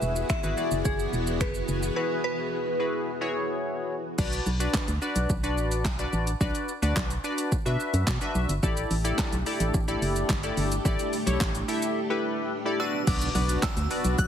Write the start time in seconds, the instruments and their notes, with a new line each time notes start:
Already playing: string machine E3 B3 F#4 G#4, analog polysynth E4 F#4 G#4 B4, synth bell E5
0.02 fm bass E1, shaker
0.16 shaker
0.29 synth bell E5, finger snap, kick, shaker
0.43 fm bass G#1, analog polysynth E4 F#4 G#4 B4, shaker
0.57 analog polysynth E4 F#4 G#4 D5, shaker
0.71 fm bass F#1, shaker
0.85 fm bass F#1, synth bell G#4, kick, shaker
0.99 shaker
1.13 fm bass E1, shaker
1.27 shaker
1.41 fm bass F#1, synth bell B4, finger snap, kick, shaker
1.54 shaker
1.68 fm bass F#1, shaker
1.83 shaker
1.96 analog polysynth E4 F#4 G#4 B4, synth bell B4
2.24 synth bell B4
2.79 analog polysynth E4 F#4 G#4 B4
3.21 analog polysynth E4 F#4 G#4 C#5
4.18 fm bass B1, analog polysynth D4 F#4 B4 D5, kick, crash, shaker
4.33 closed hi-hat, shaker
4.46 fm bass B1, shaker
4.60 analog polysynth D4 F#4 B4 D5, closed hi-hat, shaker
4.73 kick, snare, clap, shaker
4.88 fm bass D2, closed hi-hat, shaker
5.02 analog polysynth D4 F#4 B4 D5, shaker
5.16 fm bass B1, closed hi-hat, shaker
5.29 fm bass B1, kick, shaker
5.43 analog polysynth D4 F#4 B4 D5, closed hi-hat, shaker
5.57 fm bass A1, shaker
5.71 closed hi-hat, shaker
5.84 fm bass B1, kick, snare, clap, shaker
5.99 analog polysynth D4 F#4 B4 D5, closed hi-hat, shaker
6.13 fm bass A1, shaker
6.27 closed hi-hat, shaker
6.40 fm bass B1, analog polysynth D4 F#4 B4 D5, kick, shaker
6.55 closed hi-hat, shaker
6.69 shaker
6.82 fm bass D2, analog polysynth D4 F#4 B4 D5, closed hi-hat, shaker
6.96 fm bass B1, kick, snare, clap, shaker
7.10 closed hi-hat, shaker
7.24 analog polysynth D4 F#4 B4 D5, shaker
7.38 closed hi-hat, shaker
7.52 fm bass B2, kick, shaker
7.66 fm bass B2, analog polysynth D4 F#4 B4 E5, closed hi-hat, shaker
7.80 shaker
7.94 fm bass F#2, closed hi-hat, shaker
8.07 fm bass B2, kick, snare, clap, shaker
8.21 analog polysynth D4 F#4 B4 E5, closed hi-hat, shaker
8.35 fm bass B1, shaker
8.49 fm bass G1, closed hi-hat, shaker
8.63 fm bass A1, string machine A3 D4 G4, analog polysynth E4 G4 A4 D5, kick, shaker
8.77 closed hi-hat, shaker
8.91 fm bass A1, open hi-hat, shaker
9.04 analog polysynth E4 G4 A4 D5, closed hi-hat, shaker
9.18 kick, snare, clap, shaker
9.32 fm bass B1, closed hi-hat, shaker
9.46 analog polysynth E4 G4 A4 D5, open hi-hat, shaker
9.60 fm bass A1, closed hi-hat, shaker
9.74 fm bass A1, kick, shaker
9.88 analog polysynth E4 G4 A4 D5, closed hi-hat, shaker
10.02 fm bass F#1, open hi-hat, shaker
10.16 closed hi-hat, shaker
10.29 fm bass G1, kick, snare, clap, shaker
10.43 analog polysynth E4 G4 A4 D5, closed hi-hat, shaker
10.57 fm bass G1, open hi-hat, shaker
10.72 closed hi-hat, shaker
10.85 fm bass A1, analog polysynth E4 G4 A4 D5, kick, shaker
10.99 closed hi-hat, shaker
11.13 open hi-hat, shaker
11.26 fm bass B1, analog polysynth E4 G4 A4 C#5, closed hi-hat, shaker
11.40 fm bass A1, kick, snare, clap, shaker
11.55 closed hi-hat, shaker
11.68 analog polysynth E4 G4 A4 E5, open hi-hat, shaker
11.82 closed hi-hat, shaker
12.10 analog polysynth E4 G4 A4 B4
12.65 analog polysynth E4 G4 A4 D5
12.79 string machine B3 F#4, analog polysynth D4 F#4 B4 D5, synth bell E6
13.07 fm bass B1, string machine B3 D4 F#4, analog polysynth B3 D4 F#4 B4 D5, synth bell D6, kick, crash, impact, shaker
13.21 closed hi-hat, shaker
13.35 fm bass B1, analog polysynth B3 D4 F#4 B4 D5, open hi-hat, shaker
13.49 closed hi-hat, shaker
13.62 synth bell E6, kick, snare, clap, shaker
13.77 fm bass D2, closed hi-hat, shaker
13.90 analog polysynth B3 D4 F#4 B4 D5, open hi-hat, shaker
14.04 fm bass B1, closed hi-hat, shaker
14.18 fm bass B1, synth bell F#6, kick, shaker